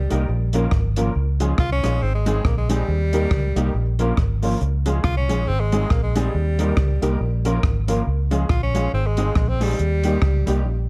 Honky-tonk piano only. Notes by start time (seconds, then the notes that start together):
0.11 A#3 D#4 G4 A#4
0.29 F4 A#4
0.54 A#3 C#4 F4 A#4
0.97 A#3 C#4 F4 A#4
1.40 G#3 C#4 F4 G#4
1.83 G#3 C#4 F4 G#4
2.02 D#4 G#4
2.26 G#3 C4 D#4 G#4
2.69 G#3 C4 D#4 G#4
3.13 A#3 D#4 G4 A#4
3.56 A#3 D#4 G4 A#4
3.75 F4 A#4
3.99 A#3 C#4 F4 A#4
4.43 A#3 C#4 F4 A#4
4.86 G#3 C#4 F4 G#4
5.29 G#3 C#4 F4 G#4
5.48 D#4 G#4
5.73 G#3 C4 D#4 G#4
6.16 G#3 C4 D#4 G#4
6.59 A#3 D#4 G4 A#4
7.02 A#3 D#4 G4 A#4
7.20 F4 A#4
7.45 A#3 C#4 F4 A#4
7.88 A#3 C#4 F4 A#4
8.31 G#3 C#4 F4 G#4
8.75 G#3 C#4 F4 G#4
8.93 D#4 G#4
9.18 G#3 C4 D#4 G#4
9.61 G#3 C4 D#4 G#4
10.04 G3 A#3 D#4 G4
10.47 G3 A#3 D#4 G4
10.66 C#4 F4